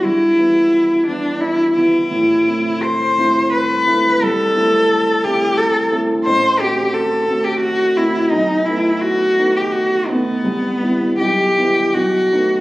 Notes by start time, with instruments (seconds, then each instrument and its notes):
0.04 grand piano G2, cello E4
0.38 grand piano E3 B3 E4
1.07 grand piano E3 B3 E4, cello D4
1.40 cello E4
1.75 grand piano E3 B3 E4, cello E4
2.11 grand piano A2
2.48 grand piano A3 C4 E4
2.83 cello C5
3.18 grand piano A3 C4 E4
3.53 cello B4
3.87 grand piano A3 C4 E4
4.21 grand piano C2, cello A4
4.56 grand piano A3 C4 E4
5.24 grand piano A3 C4 E4, cello G4
5.57 cello A4
5.91 grand piano A3 C4 E4
6.25 grand piano A1, cello C5
6.59 grand piano A3 C4 F#4, cello G4
6.93 cello A4
7.28 grand piano A3 C4 F#4
7.44 cello G4
7.60 cello F#4
7.96 grand piano A3 C4 F#4, cello E4
8.30 grand piano B1, cello D#4
8.65 grand piano A3 B3 D#4, cello E4
9.01 cello F#4
9.38 grand piano A3 B3 D#4
9.56 cello G4
9.72 cello F#4
10.08 grand piano A3 B3 D#4, cello B3
10.44 grand piano C2
10.83 grand piano G3 B3 E4
11.19 grand piano B1, cello G4
11.58 grand piano G3 B3 E4
11.94 grand piano B1, cello F#4
12.33 grand piano A3 B3 D#4